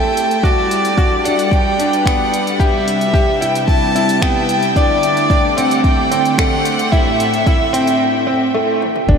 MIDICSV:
0, 0, Header, 1, 6, 480
1, 0, Start_track
1, 0, Tempo, 540541
1, 390, Time_signature, 4, 2, 24, 8
1, 8154, End_track
2, 0, Start_track
2, 0, Title_t, "Violin"
2, 0, Program_c, 0, 40
2, 0, Note_on_c, 0, 79, 100
2, 382, Note_on_c, 0, 74, 98
2, 395, Note_off_c, 0, 79, 0
2, 1109, Note_on_c, 0, 78, 87
2, 1122, Note_off_c, 0, 74, 0
2, 1342, Note_on_c, 0, 79, 98
2, 1355, Note_off_c, 0, 78, 0
2, 1825, Note_on_c, 0, 78, 92
2, 1838, Note_off_c, 0, 79, 0
2, 2306, Note_on_c, 0, 76, 98
2, 2319, Note_off_c, 0, 78, 0
2, 3029, Note_on_c, 0, 79, 91
2, 3043, Note_off_c, 0, 76, 0
2, 3259, Note_off_c, 0, 79, 0
2, 3264, Note_on_c, 0, 81, 97
2, 3746, Note_on_c, 0, 79, 98
2, 3760, Note_off_c, 0, 81, 0
2, 4232, Note_on_c, 0, 74, 100
2, 4245, Note_off_c, 0, 79, 0
2, 4955, Note_on_c, 0, 78, 94
2, 4969, Note_off_c, 0, 74, 0
2, 5179, Note_off_c, 0, 78, 0
2, 5185, Note_on_c, 0, 79, 99
2, 5669, Note_on_c, 0, 78, 99
2, 5682, Note_off_c, 0, 79, 0
2, 6143, Note_on_c, 0, 76, 97
2, 6157, Note_off_c, 0, 78, 0
2, 6861, Note_on_c, 0, 79, 90
2, 6875, Note_off_c, 0, 76, 0
2, 7106, Note_off_c, 0, 79, 0
2, 8154, End_track
3, 0, Start_track
3, 0, Title_t, "Analog synth pad"
3, 0, Program_c, 1, 89
3, 0, Note_on_c, 1, 57, 76
3, 0, Note_on_c, 1, 64, 76
3, 0, Note_on_c, 1, 67, 76
3, 0, Note_on_c, 1, 72, 82
3, 386, Note_off_c, 1, 57, 0
3, 387, Note_off_c, 1, 72, 0
3, 388, Note_off_c, 1, 67, 0
3, 390, Note_on_c, 1, 55, 87
3, 604, Note_on_c, 1, 67, 90
3, 789, Note_on_c, 1, 62, 87
3, 1158, Note_off_c, 1, 64, 0
3, 1245, Note_on_c, 1, 71, 85
3, 2294, Note_on_c, 1, 48, 83
3, 2653, Note_on_c, 1, 64, 79
3, 3075, Note_off_c, 1, 62, 0
3, 3076, Note_off_c, 1, 67, 0
3, 4221, Note_on_c, 1, 50, 92
3, 4222, Note_off_c, 1, 48, 0
3, 4225, Note_off_c, 1, 71, 0
3, 4230, Note_off_c, 1, 55, 0
3, 4508, Note_on_c, 1, 57, 91
3, 4984, Note_on_c, 1, 67, 80
3, 4999, Note_off_c, 1, 64, 0
3, 5095, Note_on_c, 1, 72, 83
3, 6145, Note_off_c, 1, 50, 0
3, 6157, Note_on_c, 1, 45, 93
3, 7105, Note_off_c, 1, 67, 0
3, 7108, Note_off_c, 1, 57, 0
3, 7110, Note_off_c, 1, 72, 0
3, 7113, Note_off_c, 1, 45, 0
3, 8073, Note_on_c, 1, 55, 89
3, 8154, Note_off_c, 1, 55, 0
3, 8154, End_track
4, 0, Start_track
4, 0, Title_t, "Upright piano"
4, 0, Program_c, 2, 0
4, 0, Note_on_c, 2, 57, 81
4, 164, Note_off_c, 2, 57, 0
4, 387, Note_on_c, 2, 66, 83
4, 641, Note_off_c, 2, 66, 0
4, 868, Note_on_c, 2, 66, 78
4, 995, Note_off_c, 2, 66, 0
4, 1110, Note_on_c, 2, 62, 77
4, 1363, Note_off_c, 2, 62, 0
4, 1592, Note_on_c, 2, 62, 76
4, 1718, Note_off_c, 2, 62, 0
4, 1830, Note_on_c, 2, 59, 77
4, 2084, Note_off_c, 2, 59, 0
4, 2307, Note_on_c, 2, 67, 92
4, 2562, Note_off_c, 2, 67, 0
4, 2786, Note_on_c, 2, 67, 86
4, 2914, Note_off_c, 2, 67, 0
4, 3029, Note_on_c, 2, 64, 74
4, 3283, Note_off_c, 2, 64, 0
4, 3512, Note_on_c, 2, 64, 80
4, 3638, Note_off_c, 2, 64, 0
4, 3747, Note_on_c, 2, 59, 82
4, 4001, Note_off_c, 2, 59, 0
4, 4231, Note_on_c, 2, 62, 93
4, 4484, Note_off_c, 2, 62, 0
4, 4704, Note_on_c, 2, 62, 80
4, 4832, Note_off_c, 2, 62, 0
4, 4946, Note_on_c, 2, 60, 81
4, 5201, Note_off_c, 2, 60, 0
4, 5429, Note_on_c, 2, 60, 80
4, 5556, Note_off_c, 2, 60, 0
4, 5672, Note_on_c, 2, 57, 90
4, 5925, Note_off_c, 2, 57, 0
4, 6147, Note_on_c, 2, 64, 97
4, 6401, Note_off_c, 2, 64, 0
4, 6633, Note_on_c, 2, 64, 87
4, 6759, Note_off_c, 2, 64, 0
4, 6865, Note_on_c, 2, 60, 85
4, 7120, Note_off_c, 2, 60, 0
4, 7342, Note_on_c, 2, 60, 77
4, 7471, Note_off_c, 2, 60, 0
4, 7588, Note_on_c, 2, 57, 87
4, 7842, Note_off_c, 2, 57, 0
4, 8068, Note_on_c, 2, 62, 91
4, 8154, Note_off_c, 2, 62, 0
4, 8154, End_track
5, 0, Start_track
5, 0, Title_t, "Detuned saw bass"
5, 0, Program_c, 3, 39
5, 8069, Note_on_c, 3, 31, 86
5, 8154, Note_off_c, 3, 31, 0
5, 8154, End_track
6, 0, Start_track
6, 0, Title_t, "Drums"
6, 153, Note_on_c, 9, 42, 72
6, 241, Note_off_c, 9, 42, 0
6, 276, Note_on_c, 9, 42, 41
6, 365, Note_off_c, 9, 42, 0
6, 386, Note_on_c, 9, 36, 102
6, 399, Note_on_c, 9, 42, 26
6, 475, Note_off_c, 9, 36, 0
6, 488, Note_off_c, 9, 42, 0
6, 633, Note_on_c, 9, 42, 68
6, 722, Note_off_c, 9, 42, 0
6, 753, Note_on_c, 9, 42, 37
6, 842, Note_off_c, 9, 42, 0
6, 867, Note_on_c, 9, 36, 102
6, 873, Note_on_c, 9, 42, 27
6, 955, Note_off_c, 9, 36, 0
6, 962, Note_off_c, 9, 42, 0
6, 1114, Note_on_c, 9, 42, 71
6, 1203, Note_off_c, 9, 42, 0
6, 1234, Note_on_c, 9, 42, 38
6, 1323, Note_off_c, 9, 42, 0
6, 1346, Note_on_c, 9, 36, 94
6, 1355, Note_on_c, 9, 42, 26
6, 1434, Note_off_c, 9, 36, 0
6, 1444, Note_off_c, 9, 42, 0
6, 1594, Note_on_c, 9, 42, 69
6, 1683, Note_off_c, 9, 42, 0
6, 1717, Note_on_c, 9, 42, 38
6, 1806, Note_off_c, 9, 42, 0
6, 1826, Note_on_c, 9, 36, 91
6, 1840, Note_on_c, 9, 26, 68
6, 1840, Note_on_c, 9, 42, 32
6, 1915, Note_off_c, 9, 36, 0
6, 1929, Note_off_c, 9, 26, 0
6, 1929, Note_off_c, 9, 42, 0
6, 2074, Note_on_c, 9, 42, 73
6, 2163, Note_off_c, 9, 42, 0
6, 2195, Note_on_c, 9, 42, 40
6, 2284, Note_off_c, 9, 42, 0
6, 2305, Note_on_c, 9, 36, 96
6, 2313, Note_on_c, 9, 42, 26
6, 2394, Note_off_c, 9, 36, 0
6, 2402, Note_off_c, 9, 42, 0
6, 2555, Note_on_c, 9, 42, 67
6, 2643, Note_off_c, 9, 42, 0
6, 2675, Note_on_c, 9, 42, 36
6, 2763, Note_off_c, 9, 42, 0
6, 2785, Note_on_c, 9, 36, 103
6, 2799, Note_on_c, 9, 42, 27
6, 2874, Note_off_c, 9, 36, 0
6, 2888, Note_off_c, 9, 42, 0
6, 3038, Note_on_c, 9, 42, 67
6, 3127, Note_off_c, 9, 42, 0
6, 3156, Note_on_c, 9, 42, 36
6, 3245, Note_off_c, 9, 42, 0
6, 3266, Note_on_c, 9, 36, 93
6, 3276, Note_on_c, 9, 42, 27
6, 3355, Note_off_c, 9, 36, 0
6, 3365, Note_off_c, 9, 42, 0
6, 3515, Note_on_c, 9, 42, 65
6, 3604, Note_off_c, 9, 42, 0
6, 3633, Note_on_c, 9, 42, 40
6, 3722, Note_off_c, 9, 42, 0
6, 3746, Note_on_c, 9, 36, 97
6, 3751, Note_on_c, 9, 26, 73
6, 3751, Note_on_c, 9, 42, 29
6, 3835, Note_off_c, 9, 36, 0
6, 3840, Note_off_c, 9, 26, 0
6, 3840, Note_off_c, 9, 42, 0
6, 3987, Note_on_c, 9, 42, 65
6, 4076, Note_off_c, 9, 42, 0
6, 4107, Note_on_c, 9, 42, 41
6, 4196, Note_off_c, 9, 42, 0
6, 4226, Note_on_c, 9, 36, 94
6, 4229, Note_on_c, 9, 42, 27
6, 4315, Note_off_c, 9, 36, 0
6, 4318, Note_off_c, 9, 42, 0
6, 4468, Note_on_c, 9, 42, 66
6, 4557, Note_off_c, 9, 42, 0
6, 4590, Note_on_c, 9, 42, 40
6, 4679, Note_off_c, 9, 42, 0
6, 4706, Note_on_c, 9, 36, 99
6, 4711, Note_on_c, 9, 42, 25
6, 4795, Note_off_c, 9, 36, 0
6, 4800, Note_off_c, 9, 42, 0
6, 4953, Note_on_c, 9, 42, 72
6, 5042, Note_off_c, 9, 42, 0
6, 5073, Note_on_c, 9, 42, 38
6, 5162, Note_off_c, 9, 42, 0
6, 5187, Note_on_c, 9, 36, 99
6, 5189, Note_on_c, 9, 42, 28
6, 5275, Note_off_c, 9, 36, 0
6, 5278, Note_off_c, 9, 42, 0
6, 5432, Note_on_c, 9, 42, 72
6, 5521, Note_off_c, 9, 42, 0
6, 5554, Note_on_c, 9, 42, 40
6, 5643, Note_off_c, 9, 42, 0
6, 5668, Note_on_c, 9, 36, 98
6, 5673, Note_on_c, 9, 26, 75
6, 5673, Note_on_c, 9, 42, 30
6, 5757, Note_off_c, 9, 36, 0
6, 5761, Note_off_c, 9, 26, 0
6, 5761, Note_off_c, 9, 42, 0
6, 5909, Note_on_c, 9, 42, 71
6, 5998, Note_off_c, 9, 42, 0
6, 6032, Note_on_c, 9, 42, 38
6, 6121, Note_off_c, 9, 42, 0
6, 6148, Note_on_c, 9, 36, 101
6, 6155, Note_on_c, 9, 42, 28
6, 6237, Note_off_c, 9, 36, 0
6, 6244, Note_off_c, 9, 42, 0
6, 6395, Note_on_c, 9, 42, 65
6, 6483, Note_off_c, 9, 42, 0
6, 6514, Note_on_c, 9, 42, 39
6, 6603, Note_off_c, 9, 42, 0
6, 6629, Note_on_c, 9, 36, 102
6, 6632, Note_on_c, 9, 42, 29
6, 6718, Note_off_c, 9, 36, 0
6, 6721, Note_off_c, 9, 42, 0
6, 6873, Note_on_c, 9, 42, 73
6, 6962, Note_off_c, 9, 42, 0
6, 6993, Note_on_c, 9, 42, 41
6, 7082, Note_off_c, 9, 42, 0
6, 7835, Note_on_c, 9, 48, 63
6, 7924, Note_off_c, 9, 48, 0
6, 7954, Note_on_c, 9, 47, 77
6, 8042, Note_off_c, 9, 47, 0
6, 8068, Note_on_c, 9, 36, 107
6, 8154, Note_off_c, 9, 36, 0
6, 8154, End_track
0, 0, End_of_file